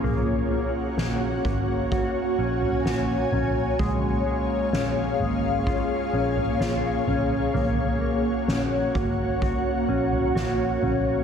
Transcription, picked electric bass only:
X:1
M:4/4
L:1/16
Q:1/4=64
K:Gblyd
V:1 name="Picked electric bass" clef=bass
B,,,4 B,,,2 A,,,3 z B,,,2 B,,,2 B,,,2 | B,,,4 B,,,2 A,,,3 z B,,,2 B,,,2 B,,,2 | B,,,4 B,,,2 A,,,3 z B,,,2 B,,,2 B,,,2 |]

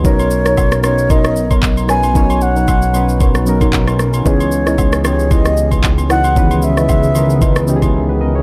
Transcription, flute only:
X:1
M:4/4
L:1/8
Q:"Swing 16ths" 1/4=114
K:B
V:1 name="Flute"
c3 c d2 z g- | g f4 z3 | c3 c d2 z f- | f e4 z3 |]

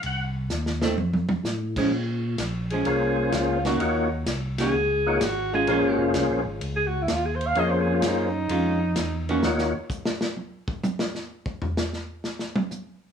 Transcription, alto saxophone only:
X:1
M:4/4
L:1/16
Q:"Swing" 1/4=128
K:Bbm
V:1 name="Alto saxophone"
z16 | z6 A6 F2 G2- | G4 z2 A6 G2 A2- | A4 z4 z A G =E F A c f |
e c A F E8- E3 z | z16 | z16 |]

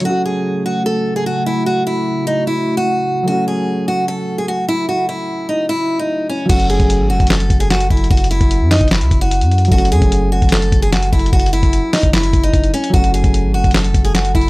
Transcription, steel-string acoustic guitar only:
X:1
M:4/4
L:1/16
Q:1/4=149
K:F#m
V:1 name="Steel-string acoustic guitar"
F2 G4 F2 A3 G F2 E2 | F2 E4 ^D2 E3 F4- F | F2 G4 F2 A3 G F2 E2 | F2 E4 ^D2 E3 D3 C2 |
F2 G4 F2 A3 G F2 E2 | F2 E4 ^D2 E3 F4- F | F2 G4 F2 A3 G F2 E2 | F2 E4 ^D2 E3 D3 C2 |
F2 G4 F2 A3 G F2 E2 |]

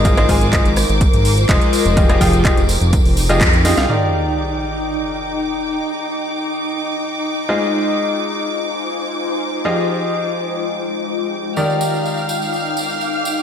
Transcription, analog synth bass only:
X:1
M:4/4
L:1/16
Q:1/4=125
K:Eb
V:1 name="Analog synth bass" clef=bass
A,,,2 A,,,3 A,,,2 A,,,2 A,,,3 F,,, z2 F,,,- | F,,,2 F,,,3 F,,,2 F,,,2 F,,,3 F,,3 C,, | z16 | z16 |
z16 | z16 | z16 |]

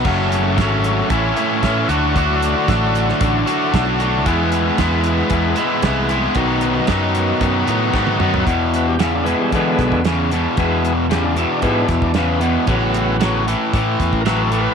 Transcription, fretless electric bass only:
X:1
M:4/4
L:1/16
Q:1/4=114
K:Bmix
V:1 name="Fretless electric bass" clef=bass
F,,,4 G,,,4 A,,,2 z2 A,,2 =D,,2- | =D,,4 A,,,4 A,,,2 z2 B,,,4 | E,,4 E,,4 E,,2 z2 =C,,4 | B,,,4 F,,4 F,,2 A,,2 G,,2 F,,2 |
[K:Emix] E,,8 E,2 B,,, E,,4- E,, | E,,8 G,,2 E,, E,,4- E,, | A,,,8 A,,2 E,, A,,,4- A,,, |]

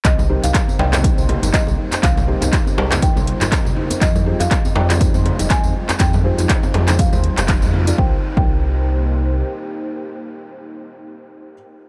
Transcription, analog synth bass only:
X:1
M:4/4
L:1/16
Q:"Swing 16ths" 1/4=121
K:Cm
V:1 name="Analog synth bass" clef=bass
C,,2 z C,, z2 C,,2 z C,, z G,,, z C,, z2 | C,,2 z C,, z2 C,,2 z C,, z G,,, z C,, z2 | F,,2 z F,, z2 F,,2 z F,, z F,,, z F,, z2 | F,,2 z F,, z2 F,,2 z E,, z F,,,2 F,,2 z |
C,, z2 C,,8- C,, z4 | z16 |]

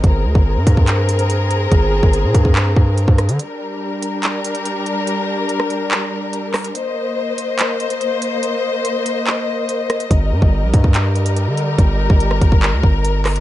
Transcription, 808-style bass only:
X:1
M:4/4
L:1/16
Q:1/4=143
K:Gphr
V:1 name="808-style bass" clef=bass
G,,,2 D,, G,,,2 G,, G,,8- G,,2 | G,,,3 G,,,2 B,, G,,4 G,,3 G,,2 D, | z16 | z16 |
z16 | z16 | G,,,2 G,, G,,,2 B,,, G,,6- G,, D,3 | G,,,3 G,,,3 G,,,3 D,, G,,,6 |]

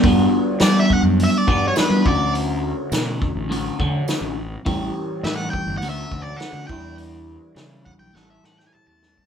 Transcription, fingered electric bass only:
X:1
M:4/4
L:1/16
Q:1/4=103
K:Glyd
V:1 name="Fingered electric bass" clef=bass
G,,2 z2 G,2 z F,,2 z G,,2 z G, D,,2- | D,,4 B,,3 A,,,3 D,2 z A,,,3 | A,,,2 z2 A,,2 z G,,, D,,2 D,,2 z D, E,,2- | E,,4 C,3 B,,, A,,,2 A,,2 z E,,3 |]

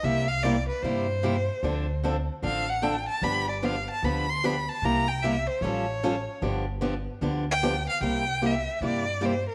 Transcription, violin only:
X:1
M:4/4
L:1/8
Q:"Swing" 1/4=150
K:Gdor
V:1 name="Violin"
e f d =B c4- | c2 z2 f ^f g a | =b d f a b c' b a | b g e c ^c4 |
z4 z g2 f | g2 e2 d2 c B |]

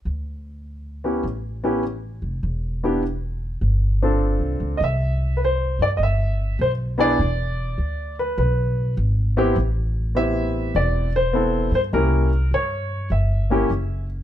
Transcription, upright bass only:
X:1
M:4/4
L:1/8
Q:"Swing" 1/4=101
K:C
V:1 name="Upright bass" clef=bass
D,,4 A,,,3 F,,, | E,,,4 G,,,2- (3G,,, C,, _D,, | C,,3 G,, G,,,2 B,,,2 | E,,,2 D,,2 B,,,2 ^G,,,2 |
A,,,4 E,,,3 G,, | C,,2 G,,2 G,,,2 ^F,,,2 |]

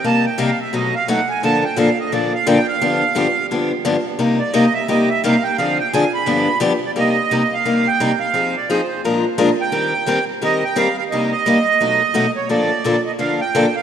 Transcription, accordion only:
X:1
M:4/4
L:1/8
Q:"Swing" 1/4=174
K:Cm
V:1 name="Accordion"
=a g f =e ^d f ^f _a | =a g f e d f g f- | f4 z4 | z d e =e _e =e f g |
f g a =b3 z d | e3 f2 g2 f- | f d c2 z3 g- | g3 z e g f f |
e e6 _d | d3 e f g2 f |]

